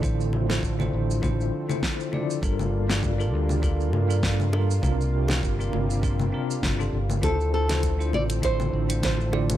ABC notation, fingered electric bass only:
X:1
M:4/4
L:1/8
Q:"Swing 16ths" 1/4=100
K:Dm
V:1 name="Fingered electric bass" clef=bass
A,,,2 A,,, A,,,2 z3 | G,,,3 D,,2 G,,3 | C,,2 G,,, G,,,2 z G,,, G,,, | D,,3 A,,,2 A,,,3 |]